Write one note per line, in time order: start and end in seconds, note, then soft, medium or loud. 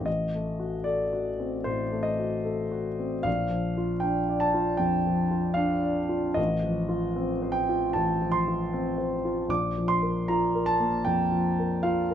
0.01 1.60 A1 soft
0.06 0.85 D#5 medium
0.35 0.76 A3 soft
0.59 1.02 F#4 soft
0.84 1.29 A4 soft
0.84 1.67 D5 medium
1.13 1.56 F#4 soft
1.40 1.83 C4 soft
1.64 2.10 A2 soft
1.64 2.06 C5 medium
1.92 2.36 A3 soft
2.03 3.24 D#5 medium
2.20 2.63 F#4 soft
2.45 2.89 A4 soft
2.71 3.15 F#4 soft
2.99 3.26 C4 soft
3.23 4.78 A#1 soft
3.23 4.03 F5 medium
3.50 3.93 F3 soft
3.77 4.20 F4 soft
4.00 4.45 D4 soft
4.00 4.42 G5 medium
4.29 4.72 D5 soft
4.40 4.81 A5 medium
4.54 4.97 F4 soft
4.77 5.22 F2 soft
4.77 5.57 G5 medium
5.07 5.49 F3 soft
5.31 5.74 F4 soft
5.54 5.99 D4 soft
5.54 6.35 F5 medium
5.83 6.26 D5 soft
6.09 6.37 F4 soft
6.34 7.90 A1 soft
6.34 7.54 D#5 medium
6.63 7.05 F3 soft
6.89 7.31 F4 soft
7.16 7.58 C4 soft
7.42 7.84 C5 soft
7.52 7.93 G5 medium
7.69 8.10 F4 soft
7.93 9.46 A1 soft
7.93 8.33 A5 medium
8.22 8.62 F3 soft
8.32 9.48 C6 medium
8.48 8.88 F4 soft
8.73 9.14 C4 soft
8.98 9.39 C5 soft
9.25 9.50 F4 soft
9.49 11.01 A#1 soft
9.49 9.89 D6 medium
9.78 10.19 F3 soft
9.88 10.28 C6 medium
10.02 10.44 A#4 soft
10.28 10.70 F4 soft
10.28 10.67 A#5 medium
10.55 10.96 A#4 soft
10.66 11.05 A5 medium
10.79 11.21 A#3 soft
11.05 11.48 F2 soft
11.05 11.84 G5 medium
11.32 11.74 F3 soft
11.59 12.01 A#4 soft
11.83 12.14 F4 soft
11.83 12.14 F5 medium
12.11 12.14 A#4 soft